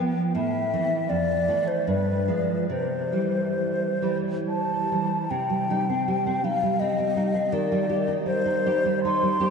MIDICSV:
0, 0, Header, 1, 3, 480
1, 0, Start_track
1, 0, Key_signature, 0, "major"
1, 0, Tempo, 761421
1, 217, Time_signature, 3, 2, 24, 8
1, 1181, Tempo, 837989
1, 2141, Tempo, 927357
1, 2621, Tempo, 835655
1, 3101, Tempo, 738916
1, 3103, Key_signature, -3, "minor"
1, 5021, Tempo, 762389
1, 5797, End_track
2, 0, Start_track
2, 0, Title_t, "Flute"
2, 0, Program_c, 0, 73
2, 218, Note_on_c, 0, 76, 58
2, 690, Note_on_c, 0, 74, 57
2, 699, Note_off_c, 0, 76, 0
2, 1057, Note_on_c, 0, 72, 46
2, 1067, Note_off_c, 0, 74, 0
2, 1188, Note_on_c, 0, 71, 42
2, 1197, Note_off_c, 0, 72, 0
2, 1649, Note_off_c, 0, 71, 0
2, 1652, Note_on_c, 0, 72, 41
2, 2466, Note_off_c, 0, 72, 0
2, 2625, Note_on_c, 0, 81, 45
2, 3097, Note_on_c, 0, 79, 50
2, 3106, Note_off_c, 0, 81, 0
2, 3835, Note_on_c, 0, 77, 61
2, 3845, Note_off_c, 0, 79, 0
2, 4065, Note_on_c, 0, 75, 54
2, 4075, Note_off_c, 0, 77, 0
2, 4539, Note_on_c, 0, 74, 63
2, 4549, Note_off_c, 0, 75, 0
2, 5012, Note_off_c, 0, 74, 0
2, 5015, Note_on_c, 0, 72, 65
2, 5503, Note_off_c, 0, 72, 0
2, 5511, Note_on_c, 0, 84, 64
2, 5797, Note_off_c, 0, 84, 0
2, 5797, End_track
3, 0, Start_track
3, 0, Title_t, "Nylon-string guitar"
3, 0, Program_c, 1, 24
3, 0, Note_on_c, 1, 53, 29
3, 0, Note_on_c, 1, 59, 37
3, 196, Note_off_c, 1, 53, 0
3, 196, Note_off_c, 1, 59, 0
3, 219, Note_on_c, 1, 45, 47
3, 450, Note_off_c, 1, 45, 0
3, 463, Note_on_c, 1, 52, 29
3, 464, Note_on_c, 1, 60, 33
3, 674, Note_off_c, 1, 52, 0
3, 674, Note_off_c, 1, 60, 0
3, 692, Note_on_c, 1, 41, 40
3, 926, Note_off_c, 1, 41, 0
3, 933, Note_on_c, 1, 52, 29
3, 935, Note_on_c, 1, 57, 35
3, 1156, Note_off_c, 1, 52, 0
3, 1156, Note_off_c, 1, 57, 0
3, 1180, Note_on_c, 1, 43, 38
3, 1406, Note_off_c, 1, 43, 0
3, 1412, Note_on_c, 1, 53, 26
3, 1416, Note_on_c, 1, 56, 28
3, 1630, Note_off_c, 1, 53, 0
3, 1631, Note_off_c, 1, 56, 0
3, 1652, Note_on_c, 1, 48, 37
3, 1887, Note_off_c, 1, 48, 0
3, 1897, Note_on_c, 1, 52, 23
3, 1900, Note_on_c, 1, 55, 29
3, 2361, Note_off_c, 1, 52, 0
3, 2362, Note_off_c, 1, 55, 0
3, 2385, Note_on_c, 1, 52, 28
3, 2388, Note_on_c, 1, 55, 28
3, 2851, Note_off_c, 1, 52, 0
3, 2852, Note_off_c, 1, 55, 0
3, 2874, Note_on_c, 1, 52, 22
3, 2876, Note_on_c, 1, 55, 24
3, 3080, Note_off_c, 1, 52, 0
3, 3082, Note_off_c, 1, 55, 0
3, 3097, Note_on_c, 1, 48, 43
3, 3221, Note_on_c, 1, 55, 35
3, 3344, Note_off_c, 1, 55, 0
3, 3352, Note_on_c, 1, 55, 30
3, 3356, Note_on_c, 1, 63, 33
3, 3462, Note_off_c, 1, 55, 0
3, 3465, Note_off_c, 1, 63, 0
3, 3478, Note_on_c, 1, 60, 33
3, 3599, Note_on_c, 1, 55, 32
3, 3670, Note_off_c, 1, 60, 0
3, 3719, Note_on_c, 1, 60, 33
3, 3788, Note_off_c, 1, 55, 0
3, 3834, Note_on_c, 1, 55, 35
3, 3835, Note_off_c, 1, 60, 0
3, 3837, Note_on_c, 1, 63, 36
3, 3939, Note_off_c, 1, 55, 0
3, 3939, Note_off_c, 1, 63, 0
3, 3955, Note_on_c, 1, 55, 35
3, 4073, Note_on_c, 1, 60, 40
3, 4139, Note_off_c, 1, 55, 0
3, 4188, Note_on_c, 1, 55, 34
3, 4257, Note_off_c, 1, 60, 0
3, 4295, Note_off_c, 1, 55, 0
3, 4302, Note_on_c, 1, 55, 33
3, 4307, Note_on_c, 1, 63, 37
3, 4409, Note_off_c, 1, 55, 0
3, 4410, Note_off_c, 1, 63, 0
3, 4417, Note_on_c, 1, 60, 33
3, 4510, Note_off_c, 1, 48, 0
3, 4537, Note_on_c, 1, 51, 50
3, 4538, Note_off_c, 1, 60, 0
3, 4663, Note_on_c, 1, 55, 41
3, 4770, Note_off_c, 1, 55, 0
3, 4777, Note_on_c, 1, 55, 31
3, 4779, Note_on_c, 1, 67, 39
3, 4887, Note_off_c, 1, 55, 0
3, 4887, Note_off_c, 1, 67, 0
3, 4898, Note_on_c, 1, 63, 38
3, 5014, Note_on_c, 1, 55, 36
3, 5092, Note_off_c, 1, 63, 0
3, 5138, Note_on_c, 1, 63, 41
3, 5214, Note_off_c, 1, 55, 0
3, 5266, Note_on_c, 1, 55, 37
3, 5270, Note_on_c, 1, 67, 42
3, 5343, Note_off_c, 1, 63, 0
3, 5381, Note_off_c, 1, 55, 0
3, 5383, Note_off_c, 1, 67, 0
3, 5390, Note_on_c, 1, 55, 43
3, 5512, Note_on_c, 1, 63, 43
3, 5584, Note_off_c, 1, 55, 0
3, 5625, Note_on_c, 1, 55, 41
3, 5699, Note_off_c, 1, 63, 0
3, 5727, Note_off_c, 1, 55, 0
3, 5733, Note_on_c, 1, 55, 38
3, 5736, Note_on_c, 1, 67, 41
3, 5797, Note_off_c, 1, 51, 0
3, 5797, Note_off_c, 1, 55, 0
3, 5797, Note_off_c, 1, 67, 0
3, 5797, End_track
0, 0, End_of_file